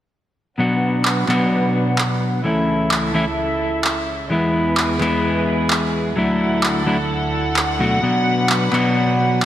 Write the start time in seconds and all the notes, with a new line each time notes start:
0.58 B2 F#3 B3 D4 F#4 B4 F#5
1.05 clap
1.27 B2 F#3 B3 D4 F#4, clap
1.98 clap
2.44 C#2 C#3 E3 A3 C#4 E4 A4 E5
2.91 clap
3.14 E3 A3 C#4 E4
3.84 clap
4.30 E2 E3 G#3 B3 E4 G#4 B4
4.77 clap
5.00 E3 G#3 B3 E4, clap
5.70 clap
6.16 D2 D3 F#3 A3 D4 E4 A4 F#5
6.63 clap
6.86 F#3 A3 D4 E4
7.56 clap
7.79 B2 F#3 A3 D4 F#4
8.02 B2 F#3 B3 D4 F#4 B4
8.49 clap
8.72 B2 F#3 B3 D4 F#4, clap